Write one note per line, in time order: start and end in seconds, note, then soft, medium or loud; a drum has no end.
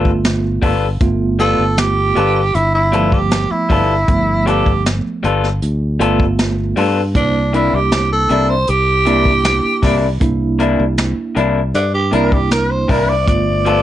0.00 0.58 G1 medium
0.00 0.73 A3 medium
0.00 0.74 B3 medium
0.00 0.74 F4 medium
0.05 kick medium
0.24 snare loud
0.24 closed hi-hat medium
0.62 0.99 G1 medium
0.62 0.85 G3 medium
0.62 0.86 B3 medium
0.62 0.86 F4 medium
0.62 0.86 A4 medium
0.62 kick medium
0.62 open hi-hat medium
1.01 1.55 G1 medium
1.01 2.18 A3 medium
1.01 2.18 B3 medium
1.01 2.19 F4 medium
1.01 kick loud
1.01 closed hi-hat medium
1.39 1.62 G3 medium
1.39 1.63 B3 medium
1.39 1.63 F4 medium
1.39 1.77 A4 medium
1.39 1.63 A4 medium
1.39 closed hi-hat medium
1.59 2.13 G1 medium
1.77 2.56 G4 medium
1.77 snare medium
1.77 closed hi-hat medium
2.15 2.52 G1 medium
2.15 2.39 G3 medium
2.15 2.39 B3 medium
2.15 2.40 F4 medium
2.15 2.40 A4 medium
2.15 closed hi-hat medium
2.55 3.47 G1 medium
2.55 2.73 E4 medium
2.55 closed hi-hat medium
2.74 3.15 E4 medium
2.92 3.81 F3 medium
2.92 3.16 G3 medium
2.92 3.81 A3 medium
2.92 3.81 B3 medium
2.92 3.16 B3 medium
2.92 3.17 F4 medium
2.92 3.17 A4 medium
2.92 closed hi-hat medium
3.12 3.53 G4 medium
3.12 kick medium
3.31 snare medium
3.31 closed hi-hat medium
3.51 4.49 E4 medium
3.51 muted fingered electric bass stroke soft
3.69 4.06 G1 medium
3.69 3.93 G3 medium
3.69 3.93 B3 medium
3.69 3.93 F4 medium
3.69 3.94 A4 medium
3.69 kick medium
3.69 open hi-hat medium
4.08 4.62 G1 medium
4.08 5.25 F3 medium
4.08 5.25 A3 medium
4.08 5.25 B3 medium
4.08 kick loud
4.08 closed hi-hat medium
4.46 4.69 G3 medium
4.46 4.70 B3 medium
4.46 4.70 F4 medium
4.46 4.84 G4 medium
4.46 4.70 A4 medium
4.46 closed hi-hat medium
4.66 5.02 G1 medium
4.66 kick medium
4.86 snare loud
4.86 closed hi-hat medium
5.05 muted fingered electric bass stroke soft
5.23 5.59 G1 medium
5.23 5.46 G3 medium
5.23 5.46 B3 medium
5.23 5.47 F4 medium
5.23 5.47 A4 medium
5.23 closed hi-hat medium
5.44 snare soft
5.62 5.98 D2 medium
5.62 closed hi-hat medium
5.99 6.73 G1 medium
5.99 6.23 G3 medium
5.99 6.87 A3 medium
5.99 6.88 B3 medium
5.99 6.23 B3 medium
5.99 6.88 F4 medium
5.99 6.23 F4 medium
5.99 6.24 A4 medium
5.99 closed hi-hat medium
6.20 kick medium
6.39 snare loud
6.39 closed hi-hat medium
6.76 7.13 G2 medium
6.76 6.99 G3 medium
6.76 7.00 B3 medium
6.76 7.00 F4 medium
6.76 7.00 A4 medium
6.76 open hi-hat medium
7.14 7.69 C2 medium
7.14 8.31 A#3 medium
7.14 8.32 D4 medium
7.14 7.56 D4 medium
7.14 8.32 E4 medium
7.14 kick loud
7.14 closed hi-hat medium
7.53 7.76 C3 medium
7.53 7.76 A#3 medium
7.53 7.77 D4 medium
7.53 7.76 E4 medium
7.53 7.77 E4 medium
7.53 closed hi-hat medium
7.73 8.26 C2 medium
7.73 8.11 G4 medium
7.92 snare medium
7.92 closed hi-hat medium
8.12 8.51 A4 medium
8.29 8.66 C2 medium
8.29 8.53 C3 medium
8.29 8.53 A#3 medium
8.29 8.53 D4 medium
8.29 8.54 E4 medium
8.29 closed hi-hat medium
8.50 8.71 C5 medium
8.67 9.60 C2 medium
8.67 10.18 G4 medium
8.67 closed hi-hat medium
9.05 9.29 C3 medium
9.05 9.94 A#3 medium
9.05 9.29 A#3 medium
9.05 9.94 D4 medium
9.05 9.30 D4 medium
9.05 9.94 E4 medium
9.05 9.30 E4 medium
9.05 closed hi-hat medium
9.25 kick medium
9.44 snare loud
9.44 closed hi-hat medium
9.65 muted fingered electric bass stroke soft
9.82 10.19 C2 medium
9.82 10.06 C3 medium
9.82 10.06 A#3 medium
9.82 10.06 D4 medium
9.82 10.07 E4 medium
9.82 kick medium
9.82 snare soft
9.82 open hi-hat medium
10.21 10.75 C2 medium
10.21 11.38 A#3 medium
10.21 11.38 D4 medium
10.21 11.38 E4 medium
10.21 kick medium
10.21 closed hi-hat medium
10.59 10.82 C3 medium
10.59 10.83 A#3 medium
10.59 10.83 D4 medium
10.59 10.83 E4 medium
10.59 closed hi-hat medium
10.80 11.15 C2 medium
10.98 snare loud
10.98 closed hi-hat medium
11.18 muted fingered electric bass stroke soft
11.35 11.72 C2 medium
11.35 11.59 C3 medium
11.35 11.59 A#3 medium
11.35 11.59 D4 medium
11.35 11.60 E4 medium
11.35 closed hi-hat medium
11.74 12.10 G2 medium
11.74 11.92 D4 medium
11.74 closed hi-hat medium
11.94 12.11 G4 medium
12.11 12.85 C2 medium
12.11 12.35 C3 medium
12.11 13.00 A#3 medium
12.11 12.35 A#3 medium
12.11 13.00 D4 medium
12.11 12.36 D4 medium
12.11 13.00 E4 medium
12.11 12.36 E4 medium
12.11 12.34 A#4 medium
12.11 closed hi-hat medium
12.32 12.50 G4 medium
12.32 kick medium
12.51 12.72 A#4 medium
12.51 snare loud
12.51 closed hi-hat medium
12.71 12.88 C5 medium
12.88 13.25 C2 medium
12.88 13.12 C3 medium
12.88 13.12 A#3 medium
12.88 13.12 D4 medium
12.88 13.13 E4 medium
12.88 13.10 A#4 medium
12.88 kick medium
12.88 open hi-hat medium
13.09 13.26 D5 medium
13.26 13.81 G1 medium
13.26 13.82 A3 medium
13.26 13.82 B3 medium
13.26 13.82 F4 medium
13.26 13.82 D5 loud
13.26 kick loud
13.26 closed hi-hat medium
13.65 13.82 G3 medium
13.65 13.82 B3 medium
13.65 13.82 F4 medium
13.65 13.82 A4 medium
13.65 closed hi-hat medium